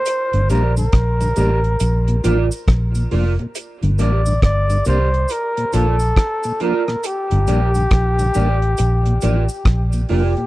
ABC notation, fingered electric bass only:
X:1
M:4/4
L:1/16
Q:"Swing 16ths" 1/4=69
K:Gm
V:1 name="Fingered electric bass" clef=bass
z G,,, B,,,2 B,,,2 A,,,2 B,,,2 A,,, z B,,,2 F,,, z | z G,,, A,,,2 G,,,2 C,,2 z2 B,,,2 z4 | z G,,, B,,,2 B,,,2 A,,,2 B,,,2 A,,, z B,,,2 F,,, z |]